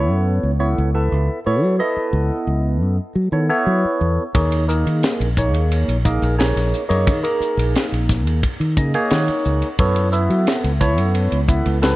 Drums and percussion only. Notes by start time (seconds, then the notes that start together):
4.35 kick, ride
4.52 ride
4.69 hi-hat pedal
4.87 ride
5.03 snare, ride
5.21 ride
5.37 kick, hi-hat pedal
5.54 ride
5.72 ride
5.89 ride
6.05 kick, hi-hat pedal
6.23 ride
6.40 snare, ride
6.57 snare, ride
6.73 hi-hat pedal
6.91 ride
7.07 kick, ride
7.24 ride
7.41 hi-hat pedal
7.59 ride
7.75 snare, ride
7.94 ride
8.09 kick, snare, hi-hat pedal
8.27 ride
8.43 kick, ride
8.61 ride
8.77 kick, hi-hat pedal
8.94 ride
9.10 snare, ride
9.28 ride
9.45 hi-hat pedal
9.62 ride
9.79 kick, ride
9.96 ride
10.12 hi-hat pedal
10.30 ride
10.47 snare, ride
10.64 ride
10.81 kick, hi-hat pedal
10.98 ride
11.15 ride
11.32 ride
11.48 kick, hi-hat pedal
11.66 ride
11.83 snare, ride